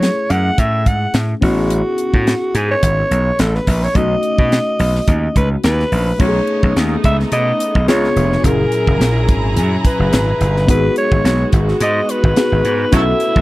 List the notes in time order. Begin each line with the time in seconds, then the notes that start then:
Already playing: A3 C#4 E4 G#4 C#5
0.03 snare, closed hi-hat
0.30 F#2 F#5, closed hi-hat
0.58 A2 E5, kick, closed hi-hat
0.86 G#2 F#5, kick, closed hi-hat
1.14 A2, snare, closed hi-hat
1.41 A1 B3 C#4 E4 F#4 G#4, kick, open hi-hat
1.70 closed hi-hat
1.98 closed hi-hat
2.14 A2, kick
2.27 snare, closed hi-hat
2.55 G#2 G#4, closed hi-hat
2.71 C#5
2.83 G#1, kick, closed hi-hat
3.11 B1, closed hi-hat
3.39 A1 A4, snare, closed hi-hat
3.55 B4, snare
3.67 A#1, kick, open hi-hat
3.83 C#5, snare
3.95 B1 A3 C#4 D#4 F#4 D#5, kick, closed hi-hat
4.23 closed hi-hat
4.38 B2, kick
4.52 snare, closed hi-hat
4.79 B1, open hi-hat
4.95 snare
5.08 D#2, kick, closed hi-hat
5.36 C#2 B4, kick, closed hi-hat
5.64 D#2 B4, snare, closed hi-hat
5.80 snare
5.92 A#1, open hi-hat
6.19 B1 A3 B3 C#4 D#4 F#4 C#5, kick, crash
6.28 G#4
6.47 closed hi-hat
6.63 B1, kick
6.76 D#2, snare, closed hi-hat
7.04 C#2 E5, kick, closed hi-hat
7.20 snare
7.32 B2 D#5, closed hi-hat
7.60 closed hi-hat
7.75 B1, kick
7.88 C#2 C#3 G#3 B3 D4 F4 G#4 C#5, snare, closed hi-hat
8.04 snare
8.16 F1, closed hi-hat
8.32 snare
8.43 F#1 A#2 F#3 C#4 E4 G#4 A#4 A#5, kick, closed hi-hat
8.72 closed hi-hat
8.87 F#1, kick
9.00 A#1, snare, closed hi-hat
9.29 G#1, kick, closed hi-hat
9.56 F#2, closed hi-hat
9.85 B4, kick, closed hi-hat
9.99 F#1
10.12 G#1, snare, closed hi-hat
10.41 G1, closed hi-hat
10.57 snare
10.67 G#1 G#3 B3 D#4 F#4 G#4 B4, kick, closed hi-hat
10.96 C#5, closed hi-hat
11.12 G#1, kick
11.24 B1, snare, closed hi-hat
11.52 G#1, kick, closed hi-hat
11.69 snare
11.80 G#2 D#5, closed hi-hat
12.09 B4, closed hi-hat
12.24 G#1, kick
12.36 B3 D#4 F#4 G#4, snare, closed hi-hat
12.52 G#1
12.65 G#2, closed hi-hat
12.91 B1 F#3 A3 C#4 E4 F#4 G#4 A4 E5, kick, closed hi-hat
13.00 A4
13.20 closed hi-hat
13.36 B1, kick